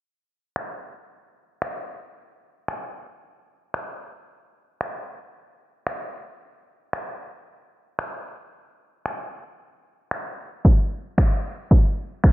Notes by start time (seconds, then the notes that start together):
0.56 finger snap
1.62 finger snap
2.68 finger snap
3.74 finger snap
4.81 finger snap
5.87 finger snap
6.93 finger snap
7.99 finger snap
9.06 finger snap
10.11 finger snap
10.65 kick
11.18 finger snap, kick
11.71 kick
12.24 finger snap, kick